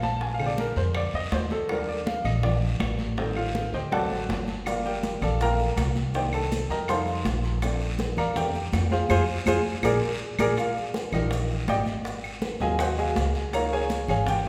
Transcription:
Already playing: A#1
0.02 A5, high conga, short guiro
0.21 G#5, high bongo, high conga, long guiro
0.34 F5
0.39 D3 G#3 C4, high conga, claves
0.46 D5
0.58 A#4, high bongo, high conga, short guiro
0.76 F2 C5, high bongo, short guiro
0.95 D5, high bongo, high conga, long guiro, claves
1.13 F2 D#5, high bongo, high conga
1.32 D#2 C5, high bongo, low bongo, high conga, short guiro
1.50 A4, high bongo, high conga, short guiro
1.69 F3 G3 D4 A#4, high bongo, high conga, long guiro, claves
1.88 D5, high conga
2.06 F5, high bongo, high conga, short guiro
2.24 A#1 D#5, high conga, low conga, short guiro, claves
2.43 F3 G3 D4 D5, high bongo, high conga, low conga, long guiro
2.62 high conga
2.80 A1, high bongo, low bongo, high conga, short guiro, claves
2.99 high conga, short guiro
3.17 D#3 G3 C4 D#4 A4 C5 D#5, high bongo, high conga, long guiro
3.36 F4 F5, high conga, claves
3.55 high bongo, high conga, short guiro
3.73 D2 G4 C5 D#5 G5, high bongo, short guiro
3.91 F#3 A3 C4 A4 D5 F#5 A5, high bongo, high conga, long guiro, claves
4.11 A1, high bongo, high conga
4.29 G1, high bongo, low bongo, high conga, short guiro
4.48 high bongo, high conga, short guiro
4.66 F3 G3 A#3 F4 A#4 D5 F5, high bongo, high conga, long guiro, claves, maracas
4.85 G4 A#4 D5 G5, high conga, maracas
5.03 high bongo, high conga, short guiro, maracas
5.21 A#1 A4 D5 F5 A5, high conga, low conga, short guiro, claves, maracas
5.40 F3 A3 A#3 A#4 F5 G5 A#5, high bongo, high conga, long guiro, maracas
5.59 high conga, maracas
5.76 C2, high bongo, low bongo, high conga, short guiro, claves, maracas
5.96 high conga, short guiro, maracas
6.14 D#3 A#3 D4 G4 C5 D#5 G5, high bongo, high conga, long guiro, maracas
6.33 A4 A5, high conga, claves, maracas
6.51 high bongo, high conga, short guiro, maracas
6.70 F2 A#4 D#5 G5 A#5, high bongo, short guiro, maracas
6.88 G3 A3 D#4 C5 F5 A5 C6, high bongo, high conga, long guiro, claves, maracas
7.07 high bongo, high conga, maracas
7.25 A#1, high bongo, low bongo, high conga, short guiro, maracas
7.44 high bongo, short guiro, maracas
7.62 A3 C4 D4, high bongo, high conga, long guiro, claves, maracas
7.80 high conga, maracas
7.99 high bongo, high conga, short guiro, maracas
8.17 F2 A#4 D5 F5 A#5, high conga, low conga, short guiro, claves, maracas
8.36 A3 C4 D4 G4 G5, high bongo, high conga, low conga, long guiro, maracas
8.54 high conga, maracas
8.73 F2, high bongo, low bongo, high conga, short guiro, claves, maracas
8.91 F4 G#4 C5 F5, high conga, short guiro, maracas
9.09 F2 F4 G#4 C5, low bongo, high conga, long guiro, claves, maracas
9.46 F2 F4 G#4 C5, low bongo, high conga, long guiro, claves, maracas
9.83 A#1 G#4 A#4 D5, low bongo, high conga, long guiro, claves, maracas
10.39 A#1 G#4 A#4 D5, low bongo, high conga, long guiro, claves, maracas
10.57 F4 F5, high bongo, high conga, long guiro, claves, maracas
10.76 high conga, maracas
10.94 high bongo, high conga, short guiro, maracas
11.12 A#1 G3 D4 D#4 F4 G4 A#4 D#5, high conga, low conga, short guiro, claves, maracas
11.31 high bongo, high conga, long guiro, maracas
11.49 high conga, maracas
11.68 G#1 G4 D5 D#5 G5, high bongo, low bongo, high conga, short guiro, claves, maracas
11.86 high conga, short guiro, maracas
12.05 high bongo, high conga, long guiro, maracas
12.23 high conga, claves, maracas
12.42 high bongo, high conga, short guiro, maracas
12.60 D#2 F#3 A#3 C4 F4 G#4 D#5 F5 G#5, high bongo, short guiro, maracas
12.78 F#4 C5 D#5 F#5, high bongo, high conga, long guiro, claves, maracas
12.97 G#4 D#5 F5 G#5, high bongo, high conga, maracas
13.16 C#2, high bongo, low bongo, high conga, short guiro, maracas
13.34 high bongo, short guiro, maracas
13.53 F3 A#3 D#4 A#4 C#5 F5 A#5, high bongo, high conga, long guiro, claves, maracas
13.72 G#4 C#5 F5 G#5, high conga, maracas
13.90 high bongo, high conga, short guiro, maracas
14.08 G#1 G#4 C#5 F5 G#5, high conga, low conga, short guiro, claves, maracas
14.27 G4 G5, high bongo, high conga, low conga, long guiro, maracas
14.45 high conga

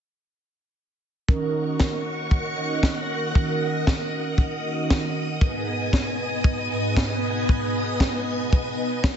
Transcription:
1.28 D#3 C#4 D#4 F#4 A#4 D#5 F#5 C#6, kick
1.80 kick, snare
2.31 kick
2.57 D#3 C#4 D#4 F#4 D#5
2.83 kick, snare
3.35 D#3 C#4 D#4 F#4 A#4 D#6, kick
3.87 kick, snare
4.38 kick
4.64 D#3 C#4 D#4 F#4 D#5
4.90 kick, snare
5.41 G#2 B3 D#4 G#4 B4 G#5, kick
5.93 kick, snare
6.44 kick
6.71 G#2 B3 D#4 G#4 D#5
6.97 kick, snare
7.49 G#2 B3 D#4 G#4 B4, kick
8.00 kick, snare
8.53 kick
9.04 kick, snare

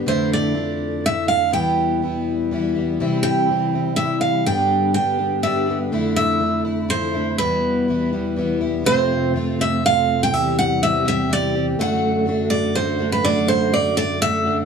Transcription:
0.06 F2 D3 F3 A3 D4 E4 C5
0.33 D5
0.54 F3 A3 D4 E4
1.04 F3 A3 D4 E4 E5
1.28 A3 D4 E4 F5
1.51 E2 B2 E3 G3 B3 E4 G5
2.02 E3 G3 B3 E4
2.51 E3 G3 B3 E4
2.75 E3 G3 B3 E4
2.99 C3 E3 G3 C4 E4
3.23 G5
3.49 E3 G3 C4 E4
3.73 G3 C4 E4
3.96 E3 G3 C4 E4 E5
4.21 F5
4.45 G2 D3 G3 B3 D4 G4 G5
4.94 G3 B3 G5
4.98 D4 G4
5.18 G3 B3 D4 G4
5.43 G3 B3 D4 G4 E5
5.69 G3 B3 D4 G4
5.92 F2 D3 F3 A3 D4 E4
6.16 E5
6.39 F3 A3 D4 E4
6.65 A3 D4 E4
6.89 F3 A3 D4 E4 C5
7.14 A3 D4 E4
7.38 E2 B2 E3 G3 B3 E4 B4
7.88 E3 G3 B3 E4
8.12 E3 G3 B3 E4
8.36 E3 G3 B3 E4
8.61 E3 G3 B3 E4
8.84 F2 C3 F3 A3 C4 F4 C5
9.34 F3 A3 C4 F4
9.58 F3 A3 C4 F4 E5
9.83 F3 A3 C4 F4 F5
10.23 G5
10.31 E2 E3 G3 C4 G4 E5
10.59 F#5
10.82 E3 G3 C4 G4 E5
11.05 G3 C4 G4 E5
11.29 E3 G3 C4 G4 D5
11.55 G3 C4 G4
11.79 F#2 D3 F#3 A3 D4 F#4 F#5
12.26 F#3 A3 D4 F#4
12.50 D5
12.75 F#3 A3 D4 F#4 C5
12.99 A3 D4 F#4
13.12 B4
13.24 F#3 A3 D4 F#4 D5
13.48 C5
13.72 F#3 A3 D4 F#4 D5
13.96 A3 D4 F#4 D5
14.21 F#3 A3 D4 F#4 E5
14.45 A3 D4 F#4

